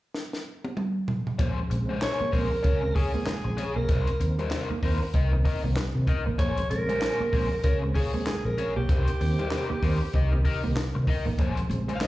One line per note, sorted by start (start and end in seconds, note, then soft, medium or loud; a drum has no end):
0.14 snare medium
0.33 snare medium
0.64 high tom medium
0.77 mid tom medium
1.08 floor tom loud
1.27 floor tom medium
1.39 1.65 A#1 medium
1.39 1.58 A#2 medium
1.39 1.53 A#3 medium
1.39 1.58 C#4 medium
1.39 1.58 G#4 medium
1.39 1.58 C5 medium
1.39 kick loud
1.39 closed hi-hat loud
1.58 1.63 G#3 soft
1.58 1.63 C4 soft
1.70 1.86 A#1 medium
1.70 1.89 C#3 medium
1.70 1.90 G#3 medium
1.70 1.90 C4 medium
1.70 muted overdriven electric guitar stroke soft
1.70 muted clean electric guitar stroke soft
1.70 closed hi-hat medium
1.89 1.99 G#3 medium
1.89 2.00 C#4 soft
1.89 1.99 G#4 soft
1.89 1.99 C5 medium
2.01 2.21 A#2 medium
2.01 2.20 C#4 medium
2.01 2.20 G#4 medium
2.01 2.19 C5 medium
2.01 2.35 C#5 loud
2.01 snare loud
2.01 clap medium
2.01 closed hi-hat medium
2.20 2.30 A#3 medium
2.20 muted overdriven electric guitar stroke soft
2.20 muted fingered electric bass stroke soft
2.32 2.49 A#1 loud
2.32 2.52 C#3 medium
2.32 2.51 G#3 medium
2.32 2.47 A#3 medium
2.32 2.51 C4 medium
2.32 2.47 C#4 medium
2.32 2.48 G#4 medium
2.32 2.96 A#4 medium
2.32 2.48 C5 medium
2.32 kick medium
2.32 open hi-hat medium
2.51 2.57 G#3 soft
2.51 2.57 C4 soft
2.51 muted overdriven electric guitar stroke soft
2.63 2.90 C#2 medium
2.63 2.82 C#4 medium
2.63 2.78 C#4 medium
2.63 2.82 G#4 medium
2.63 2.82 C#5 medium
2.63 kick medium
2.63 closed hi-hat medium
2.82 2.96 C#3 medium
2.82 2.96 G#3 medium
2.82 2.96 C4 medium
2.82 muted overdriven electric guitar stroke soft
2.95 3.15 A#2 medium
2.95 3.10 C#4 medium
2.95 3.78 G#4 loud
2.95 3.10 G#4 medium
2.95 3.11 C#5 medium
2.95 muted clean electric guitar stroke soft
2.95 kick medium
2.95 open hi-hat medium
3.14 3.27 C#3 medium
3.14 3.27 G#3 medium
3.14 3.24 A#3 medium
3.14 3.27 C4 medium
3.14 muted overdriven electric guitar stroke soft
3.26 3.46 A#2 medium
3.26 3.41 G#3 medium
3.26 muted overdriven electric guitar stroke soft
3.26 muted fingered electric bass stroke soft
3.26 snare loud
3.26 clap medium
3.26 closed hi-hat medium
3.44 3.55 A#1 medium
3.44 3.58 C#3 medium
3.44 3.57 G#3 medium
3.44 3.57 C4 medium
3.44 muted overdriven electric guitar stroke soft
3.44 muted clean electric guitar stroke soft
3.57 3.66 G#3 soft
3.57 3.66 C4 soft
3.57 3.76 C#4 medium
3.57 3.76 G#4 medium
3.57 3.76 C#5 medium
3.57 closed hi-hat medium
3.76 3.87 B1 medium
3.76 3.86 A#3 medium
3.76 4.39 A#4 medium
3.76 muted overdriven electric guitar stroke medium
3.89 4.05 C2 medium
3.89 4.08 C3 medium
3.89 4.03 C4 medium
3.89 4.08 D#4 medium
3.89 4.08 A#4 medium
3.89 4.08 C5 medium
3.89 kick loud
3.89 closed hi-hat loud
4.07 4.13 A#3 soft
4.07 4.13 C4 soft
4.07 closed hi-hat medium
4.20 4.36 D#2 medium
4.20 4.39 D#3 medium
4.20 4.39 A#3 medium
4.20 4.39 C4 medium
4.20 muted clean electric guitar stroke soft
4.20 muted overdriven electric guitar stroke soft
4.20 closed hi-hat medium
4.39 4.48 G3 medium
4.39 4.50 D#4 medium
4.39 4.49 A#4 medium
4.39 4.49 C5 medium
4.39 closed hi-hat soft
4.51 4.70 C3 medium
4.51 4.70 D#4 medium
4.51 4.71 A#4 medium
4.51 4.69 C5 medium
4.51 snare loud
4.51 clap medium
4.51 closed hi-hat medium
4.70 4.80 A#3 medium
4.70 muted fingered electric bass stroke soft
4.70 muted overdriven electric guitar stroke soft
4.82 4.98 D#2 loud
4.82 5.01 D#3 medium
4.82 5.00 A#3 medium
4.82 4.97 A#3 medium
4.82 5.00 C4 medium
4.82 4.97 D#4 medium
4.82 4.98 A#4 medium
4.82 4.98 C5 medium
4.82 kick medium
4.82 open hi-hat medium
5.01 5.07 A#3 soft
5.01 5.06 C4 soft
5.01 muted overdriven electric guitar stroke medium
5.14 5.40 C2 loud
5.14 5.28 C4 medium
5.14 5.33 D#4 medium
5.14 5.33 A#4 loud
5.14 5.33 D#5 loud
5.14 kick medium
5.14 closed hi-hat medium
5.32 5.45 D#3 medium
5.32 5.45 A#3 medium
5.32 5.46 C4 medium
5.32 muted overdriven electric guitar stroke soft
5.45 5.64 C3 medium
5.45 5.60 D#4 medium
5.45 5.60 A#4 medium
5.45 5.60 D#5 medium
5.45 muted clean electric guitar stroke soft
5.45 kick medium
5.45 open hi-hat medium
5.64 5.74 C2 medium
5.64 5.77 D#3 medium
5.64 5.77 A#3 medium
5.64 5.73 A#3 medium
5.64 5.77 C4 medium
5.64 muted overdriven electric guitar stroke soft
5.76 5.95 C3 medium
5.76 5.90 G3 medium
5.76 muted overdriven electric guitar stroke soft
5.76 snare loud
5.76 clap medium
5.76 closed hi-hat medium
5.95 6.06 C3 medium
5.95 6.08 D#3 medium
5.95 6.06 A#3 medium
5.95 6.07 C4 medium
5.95 muted clean electric guitar stroke soft
6.07 6.15 A#3 soft
6.07 6.15 C4 soft
6.07 6.22 D#4 medium
6.07 6.22 A#4 medium
6.07 6.23 D#5 medium
6.07 kick medium
6.07 closed hi-hat medium
6.26 6.39 A1 medium
6.26 6.36 A#3 medium
6.26 muted overdriven electric guitar stroke soft
6.38 6.65 A#1 medium
6.38 6.58 A#2 medium
6.38 6.53 A#3 medium
6.38 6.57 C#4 medium
6.38 6.58 G#4 loud
6.38 6.58 C5 medium
6.38 6.68 C#5 loud
6.38 kick loud
6.38 closed hi-hat loud
6.57 6.63 G#3 soft
6.57 6.63 C4 soft
6.57 closed hi-hat medium
6.70 6.86 A#1 medium
6.70 6.89 C#3 medium
6.70 6.89 G#3 medium
6.70 6.89 C4 medium
6.70 7.60 A#4 loud
6.70 muted overdriven electric guitar stroke soft
6.70 muted clean electric guitar stroke soft
6.70 closed hi-hat medium
6.89 6.98 G#3 medium
6.89 6.99 C#4 soft
6.89 6.99 G#4 medium
6.89 6.98 C5 medium
6.89 closed hi-hat soft
7.02 7.20 A#2 medium
7.02 7.20 C#4 medium
7.02 7.21 G#4 medium
7.02 7.19 C5 medium
7.02 muted clean electric guitar stroke soft
7.02 snare loud
7.02 clap medium
7.02 closed hi-hat medium
7.20 7.29 A#3 medium
7.20 muted fingered electric bass stroke soft
7.20 muted overdriven electric guitar stroke soft
7.33 7.48 A#1 loud
7.33 7.52 C#3 medium
7.33 7.50 G#3 medium
7.33 7.47 A#3 medium
7.33 7.50 C4 medium
7.33 7.47 C#4 medium
7.33 7.48 G#4 medium
7.33 7.48 C5 medium
7.33 kick medium
7.33 open hi-hat medium
7.51 7.56 G#3 soft
7.51 7.56 C4 soft
7.51 muted overdriven electric guitar stroke soft
7.64 7.90 C#2 medium
7.64 7.82 C#4 medium
7.64 7.78 C#4 medium
7.64 7.82 G#4 medium
7.64 7.78 A#4 medium
7.64 7.82 C#5 medium
7.64 kick medium
7.64 closed hi-hat medium
7.83 7.95 C#3 medium
7.83 7.95 G#3 medium
7.83 7.96 C4 medium
7.83 muted overdriven electric guitar stroke soft
7.95 8.14 A#2 medium
7.95 8.09 C#4 medium
7.95 8.24 G#4 medium
7.95 8.10 G#4 medium
7.95 8.10 C#5 medium
7.95 muted clean electric guitar stroke soft
7.95 kick medium
7.95 open hi-hat medium
8.14 8.27 C#3 medium
8.14 8.27 G#3 medium
8.14 8.23 A#3 medium
8.14 8.27 C4 medium
8.14 muted overdriven electric guitar stroke soft
8.26 8.45 A#2 medium
8.26 8.40 G#3 medium
8.26 8.47 G#4 medium
8.26 muted overdriven electric guitar stroke soft
8.26 muted fingered electric bass stroke soft
8.26 snare loud
8.26 clap medium
8.26 closed hi-hat medium
8.45 8.55 A#1 medium
8.45 8.58 C#3 medium
8.45 8.57 G#3 medium
8.45 8.57 C4 medium
8.45 8.76 A#4 medium
8.45 muted clean electric guitar stroke soft
8.58 8.65 G#3 soft
8.58 8.65 C4 soft
8.58 8.72 C#4 medium
8.58 8.73 G#4 medium
8.58 8.73 C#5 medium
8.58 closed hi-hat medium
8.76 8.87 B1 medium
8.76 8.86 A#3 medium
8.76 11.03 G4 loud
8.76 muted overdriven electric guitar stroke soft
8.89 9.04 C2 loud
8.89 9.08 C3 medium
8.89 9.03 C4 medium
8.89 9.07 D#4 medium
8.89 9.08 A#4 medium
8.89 9.08 C5 loud
8.89 kick loud
8.89 closed hi-hat loud
9.08 9.13 A#3 soft
9.08 9.13 C4 soft
9.08 closed hi-hat medium
9.20 9.36 D#2 medium
9.20 9.39 D#3 medium
9.20 9.39 A#3 medium
9.20 9.39 C4 medium
9.20 muted clean electric guitar stroke soft
9.20 muted overdriven electric guitar stroke soft
9.20 open hi-hat medium
9.39 9.48 G3 medium
9.39 9.49 D#4 soft
9.39 9.49 A#4 medium
9.39 9.49 C5 soft
9.39 closed hi-hat soft
9.51 9.70 C3 medium
9.51 9.69 D#4 medium
9.51 9.70 A#4 medium
9.51 9.69 C5 medium
9.51 muted clean electric guitar stroke soft
9.51 snare loud
9.51 clap medium
9.51 closed hi-hat medium
9.70 9.79 A#3 medium
9.70 muted overdriven electric guitar stroke soft
9.70 muted fingered electric bass stroke soft
9.82 9.98 D#2 medium
9.82 10.01 D#3 medium
9.82 9.96 A#3 medium
9.82 10.00 A#3 medium
9.82 10.00 C4 medium
9.82 9.97 D#4 medium
9.82 9.97 A#4 medium
9.82 9.98 C5 medium
9.82 kick medium
9.82 open hi-hat medium
10.01 10.06 A#3 soft
10.01 10.06 C4 soft
10.01 muted overdriven electric guitar stroke soft
10.13 10.40 C2 loud
10.13 10.28 C4 medium
10.13 10.33 D#4 medium
10.13 10.33 A#4 medium
10.13 10.33 D#5 medium
10.13 kick medium
10.13 closed hi-hat medium
10.33 10.45 D#3 medium
10.33 10.45 A#3 medium
10.33 10.46 C4 medium
10.33 muted overdriven electric guitar stroke soft
10.45 10.64 C3 medium
10.45 10.59 D#4 medium
10.45 10.60 A#4 medium
10.45 10.60 D#5 medium
10.45 muted clean electric guitar stroke soft
10.45 kick medium
10.45 open hi-hat medium
10.63 10.74 C2 medium
10.63 10.76 D#3 medium
10.63 10.73 A#3 medium
10.63 10.76 A#3 medium
10.63 10.77 C4 medium
10.63 muted overdriven electric guitar stroke soft
10.76 10.95 C3 medium
10.76 10.90 G3 medium
10.76 snare loud
10.76 clap medium
10.76 closed hi-hat medium
10.95 11.06 C3 medium
10.95 11.08 D#3 medium
10.95 11.07 A#3 medium
10.95 11.07 C4 medium
10.95 muted clean electric guitar stroke soft
10.95 muted overdriven electric guitar stroke medium
11.07 11.15 A#3 soft
11.07 11.15 C4 soft
11.07 11.26 D#4 medium
11.07 11.27 A#4 medium
11.07 11.26 D#5 loud
11.07 kick medium
11.07 open hi-hat medium
11.25 11.39 A1 medium
11.25 11.35 A#3 medium
11.25 muted overdriven electric guitar stroke soft
11.38 11.64 A#1 medium
11.38 11.58 A#2 medium
11.38 11.52 A#3 medium
11.38 11.57 C#4 medium
11.38 11.58 G#4 medium
11.38 11.58 C5 medium
11.38 kick loud
11.38 closed hi-hat loud
11.57 11.63 G#3 soft
11.57 11.62 C4 soft
11.57 closed hi-hat medium
11.70 11.85 A#1 medium
11.70 11.89 C#3 medium
11.70 11.89 G#3 medium
11.70 11.89 C4 medium
11.70 muted clean electric guitar stroke soft
11.70 muted overdriven electric guitar stroke soft
11.70 closed hi-hat medium
11.70 muted conga soft
11.88 11.98 G#3 medium
11.88 11.99 C#4 soft
11.88 11.99 G#4 soft
11.88 11.98 C5 medium
11.88 closed hi-hat soft
11.95 12.04 F5 medium
12.01 12.07 A#2 medium
12.01 12.07 C#4 medium
12.01 12.07 G#4 medium
12.01 12.07 C5 medium
12.01 12.07 D#5 loud
12.01 snare medium
12.01 clap medium
12.01 closed hi-hat medium
12.01 high conga medium